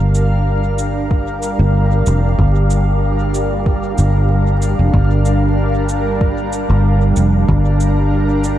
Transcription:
Already playing: G1 G3 D4 G4 A#4 F5
0.15 cabasa
0.79 cabasa
1.11 kick
1.43 cabasa
1.59 G1
2.07 F1, cabasa
2.38 G1, kick
2.70 cabasa
3.34 cabasa
3.66 kick
3.98 G1, cabasa
4.62 cabasa
4.79 F1
4.93 G1 D4, kick
5.25 cabasa
5.89 cabasa
6.21 kick
6.53 cabasa
6.70 G1
7.16 F1, cabasa
7.49 G1, kick
7.80 cabasa
8.44 cabasa

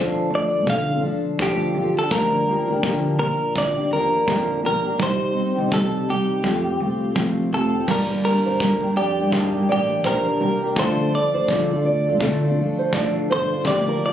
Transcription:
Already playing: D3 F3 D4 F4 A4 C5
0.30 D2 F3 D4 F4 A4
0.35 D5
0.67 D3 F5, kick
0.87 D4 F4 A4
1.01 D2 F3 D4 F4 A4
1.38 D2 D3 F3 D4 F4 A4, kick
1.42 G4
1.74 G1 F3 D4 F4 A4
1.96 D4 F4 A4
2.11 D2 D3 F3 A#3 D4 G4 A#4, kick
2.46 F3 A#3 D4 G4
2.67 D2 A#3 D4 G4
2.82 D3 F3 A#3 D4 G4, kick
3.18 A#2 F3 A#3 D4 G4 A#4
3.55 D3 D5, kick
3.76 A#3 D4 G4
3.91 D#2 F3 A#3 D4 G4 A#4
4.26 F2 D3 F3 A#3 D4 G4, kick
4.62 A#1 F3 A#3 D4 G4
4.66 A#4
4.83 A#3 D4 G4
4.98 C2 C3 G3 C4 D#4 G4, kick
5.03 C5
5.33 G3 C4 D#4 G4
5.54 C2 C4 D#4 G4
5.69 C3 G3 C4 D#4 G4, kick
5.74 A4
6.07 C2 G3 C4 D#4 G4
6.43 F2 F3 A3 C4 F4 G4, kick
6.64 C4 F4 G4
6.79 C2 A3 C4 F4 G4
7.15 C2 F3 A3 C4 F4 G4, kick
7.50 F1 A3 C4 F4 G4 A4
7.73 C4 F4 G4
7.87 G1 G2 D3 G3 A#3 D4 G4 D5, kick, crash
7.91 A#4
8.10 A#4
8.24 G3 A#3 D4 G4 A#4
8.46 G1 C5
8.60 G2 D3 G3 A#3 D4 G4, kick
8.81 G3 A#3 D4 G4
8.96 F2 G4 D5
9.18 G3 A#3 D4 G4
9.31 G2 A#3 D4 G4 G#4, kick
9.40 A5
9.55 G3 A#3 D4 G4
9.68 A1 G3 A#3 D4 G4 D5
10.04 A#1 G2 D3 G3 A#3 D4 G4 A#4 C5, kick
10.39 C2 G3 A#3 D4 G4 A#4
10.62 G3 A#3 D4 G4
10.75 D2 D3 F3 A3 D4 F4 A4 D5, kick
10.79 C5
11.12 F3 D4 F4 A4 D5
11.34 D2 C5
11.48 D3 F3 D4 F4 A4, kick
11.71 D4 F4 A4
11.85 D2 D5
12.07 D4 F4 A4
12.19 D3 A3 D4 F4 A4 D5, kick
12.43 D4 F4 A4
12.57 D2 F3 D4 F4 A4
12.79 C5
12.92 D2 D3 F3 D4 F4 A4 D5, kick
13.30 G1 F3 D4 F4 A4 C5
13.52 D4 F4 A4
13.64 D2 D3 F3 A#3 D4 F4 G4 D5, kick
13.88 A#4
14.02 F3 A#3 D4 G4
14.06 D5

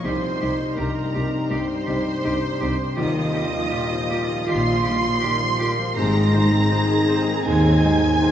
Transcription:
0.02 C3 G3 D#4 G4 C5 C6
0.07 C2
0.40 C2 C3 G3 D#4 G4
0.74 C3 G3 D#4 G4 A#4 A#5
0.79 C2 G2 D#4
1.14 C2 C3 G3 C4 D#4 G4
1.49 C2 G2 C3 G3 D#4 G4 C5 C6
1.86 C2 C3 G3 D#4 G4
2.24 C2 G2 C3 G3 D#4 G4
2.60 C2 C3 G3 C4 D#4 G4
2.96 D#2 D#3 F4 G4 D#5 D#6
3.18 F3
3.33 G3 D#4 F4 G4
3.54 F3
3.70 A#2 D#3 F4 G4
3.91 F3
4.09 G3 A#3 F4 G4
4.30 F3
4.46 A#1 A#2 D#3 F4 G4 C6 C7
4.69 F3
4.83 D#4 F4 G4
4.87 G3
5.06 F3
5.20 A#2 F4 G4
5.25 D#3
5.42 F3
5.59 G3 A#3 F4 G4
5.79 F3
5.96 G#1 G#2 C3 C4 D#4 G#4 C5 A#5 A#6
6.15 D#3
6.33 D#3 G#3 D#4 C5
6.53 C4
6.69 D#3 G#3 D#4 C5
6.90 D#3
7.07 C3 C4 D#4 C5
7.26 D#3
7.44 D#2 G#2 D#3 G#3 D#4 C5 G#5 G#6
7.64 C4
7.83 D#3 G#3 D#4 C5
8.01 D#3
8.19 C3 D#3 D#4 C5

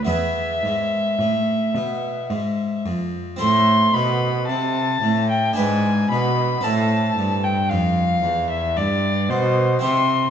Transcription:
0.05 E2 B3 E4 G#4 E5
0.09 E2
0.63 G#2
1.19 A2
1.75 B2
2.30 G#2
2.85 F2
3.36 A2 C4 E4 A4
3.41 A2 C6
3.94 B2 B5
4.48 C3 A5
5.03 A2
5.30 G5
5.53 D4 E4 B4 G#5
5.58 G#2
6.11 B2 B5
6.61 A2 C4 E4 A4 A5
6.65 A2
7.17 G2
7.44 G5
7.69 F2 F5
8.23 E2
8.50 E5
8.77 G2 D5
9.30 B2 C5
9.79 C4 E4 G4 C6
9.84 C3

